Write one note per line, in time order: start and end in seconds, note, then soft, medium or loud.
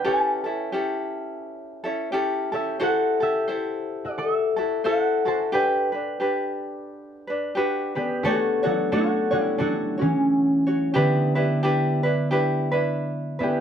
0.00 1.86 B4 medium
0.00 0.14 D5 medium
0.00 1.36 G5 medium
0.04 0.45 C#4 medium
0.04 0.45 E4 medium
0.04 0.45 G4 medium
0.04 0.43 A4 medium
0.04 1.99 C#5 medium
0.04 1.52 A5 loud
0.44 0.72 C#4 soft
0.44 0.73 E4 medium
0.44 0.73 A4 soft
0.72 1.82 C#4 medium
0.72 1.84 E4 medium
0.72 1.81 G4 medium
0.72 1.84 A4 medium
1.84 2.12 C#4 medium
1.84 2.11 E4 medium
1.84 2.11 A4 medium
2.12 2.52 C#4 medium
2.12 2.52 E4 medium
2.12 2.51 G4 medium
2.12 2.51 A4 medium
2.52 2.80 C#4 soft
2.52 2.79 E4 soft
2.52 2.89 G4 medium
2.52 2.79 A4 medium
2.52 3.22 E5 medium
2.80 3.19 E4 medium
2.80 3.20 F#4 medium
2.80 3.19 A4 medium
2.80 4.17 A4 medium
2.80 3.19 C5 medium
2.80 3.28 F#5 loud
3.20 3.48 E4 soft
3.20 4.11 G4 medium
3.20 3.47 A4 medium
3.20 4.18 E5 medium
3.48 4.56 E4 medium
3.48 4.55 A4 medium
3.48 4.55 C5 medium
4.05 5.61 F#4 medium
4.05 5.90 D5 medium
4.18 4.85 A4 medium
4.18 5.91 E5 medium
4.56 4.84 E4 soft
4.56 4.84 F#4 medium
4.56 4.84 A4 medium
4.84 5.24 E4 medium
4.84 5.24 F#4 medium
4.84 7.05 A4 medium
4.84 5.24 A4 medium
4.84 5.24 C5 medium
4.84 5.61 F#5 loud
5.25 5.52 E4 soft
5.25 5.52 F#4 soft
5.25 5.52 A4 soft
5.25 5.34 C5 medium
5.25 5.34 A5 loud
5.52 5.92 D4 medium
5.52 5.92 G4 medium
5.52 5.91 B4 medium
5.52 7.59 B4 medium
5.52 7.53 G5 loud
5.92 6.19 D4 soft
5.92 6.19 B4 soft
6.20 7.29 D4 medium
6.20 7.27 G4 medium
6.20 7.26 B4 medium
7.27 7.55 D4 medium
7.27 7.55 B4 medium
7.55 7.96 D4 medium
7.55 7.96 F#4 medium
7.55 7.95 G4 medium
7.55 7.94 B4 medium
7.95 10.96 B3 medium
7.95 8.24 D4 soft
7.95 8.23 G4 loud
7.95 8.23 B4 medium
8.23 8.92 A3 medium
8.23 8.63 D4 medium
8.23 8.62 F#4 medium
8.23 8.34 G4 loud
8.23 8.63 A4 medium
8.23 8.62 C#5 medium
8.34 8.91 F#4 loud
8.63 9.60 F#3 medium
8.63 8.91 D4 medium
8.63 9.60 D4 medium
8.63 8.91 F#4 medium
8.63 8.91 A4 soft
8.63 8.91 C#5 medium
8.92 12.26 A3 medium
8.92 9.32 D4 medium
8.92 9.39 F#4 medium
8.92 9.31 F#4 medium
8.92 9.32 A4 medium
8.92 9.30 C#5 medium
9.31 11.00 G3 medium
9.31 9.57 D4 soft
9.31 11.93 E4 medium
9.31 9.58 F#4 medium
9.31 9.59 C#5 medium
9.58 9.71 F#3 medium
9.58 9.99 D4 medium
9.58 9.71 D4 loud
9.58 9.98 F#4 medium
9.58 9.97 A4 medium
9.58 9.96 C#5 medium
9.98 11.01 C#4 medium
9.98 10.66 F#4 medium
9.98 10.65 C#5 medium
10.02 11.00 E3 medium
10.67 10.94 F#4 soft
10.67 10.93 C#5 medium
10.94 13.61 D3 medium
10.94 13.40 B3 medium
10.94 11.35 D4 medium
10.94 11.34 E4 medium
10.94 11.34 G4 medium
10.94 11.34 B4 medium
11.35 11.62 D4 medium
11.35 11.63 E4 medium
11.35 11.62 G4 medium
11.35 11.63 B4 medium
11.63 12.03 D4 medium
11.63 12.04 E4 medium
11.63 12.03 G4 medium
11.63 12.02 B4 medium
12.03 12.30 D4 medium
12.03 12.31 E4 medium
12.03 12.31 B4 medium
12.31 12.71 D4 medium
12.31 12.72 E4 medium
12.31 12.71 G4 medium
12.31 12.70 B4 medium
12.72 13.40 D4 medium
12.72 13.39 E4 medium
12.72 13.38 B4 medium
13.39 13.61 B3 medium
13.39 13.61 D4 soft
13.39 13.61 E4 medium
13.39 13.61 B4 medium
13.43 13.61 G4 loud